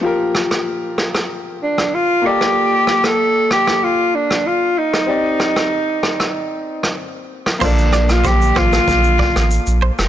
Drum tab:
CC |----------------|----------------|----------------|x---------------|
SH |----------------|----------------|----------------|-xxxxx-xxx-xxx-x|
SD |--rr--rr---r---r|--rr--rr---r---r|--rr--rr---r---r|--rr--rr---r---r|
BD |----------------|----------------|----------------|o---o-o-o-o-----|